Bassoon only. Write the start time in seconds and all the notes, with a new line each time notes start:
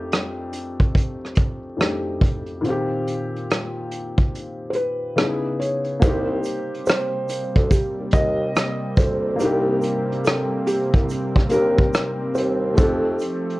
6.03 C2
7.57 D2
8.00 D#2
8.14 D#2
8.98 D2
9.41 C2
10.95 C2
11.36 D#2
11.52 D#2
12.37 D#2
12.79 F2